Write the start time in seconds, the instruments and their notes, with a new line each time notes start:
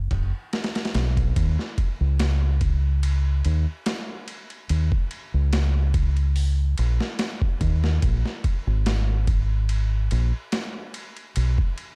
0.11 fingered electric bass F#1, kick, ride
0.53 snare, ride
0.64 snare, ride
0.75 snare, ride
0.85 snare, ride
0.95 fingered electric bass B1, snare, ride
1.17 kick, ride
1.36 fingered electric bass D#2, kick, ride
1.59 snare
1.78 kick, ride
2.01 fingered electric bass C#2
2.19 snare, ride
2.61 kick, ride
3.03 ride
3.45 fingered electric bass D#2, ride
3.86 snare, ride
4.28 ride
4.50 ride
4.69 fingered electric bass D#2, ride
4.92 kick
5.11 ride
5.34 fingered electric bass C#2
5.53 snare, ride
5.94 kick, ride
6.17 ride
6.36 open hi-hat
6.78 fingered electric bass A#1, ride
7.01 snare
7.19 snare, ride
7.42 kick
7.61 fingered electric bass D#2, kick, ride
7.84 snare
8.02 fingered electric bass A#1, kick, ride
8.26 snare
8.44 kick, ride
8.67 fingered electric bass G#1
8.86 snare, ride
9.27 kick, ride
9.69 ride
10.11 fingered electric bass A#1, ride
10.52 snare, ride
10.94 ride
11.17 ride
11.36 fingered electric bass B1, ride
11.58 kick
11.78 ride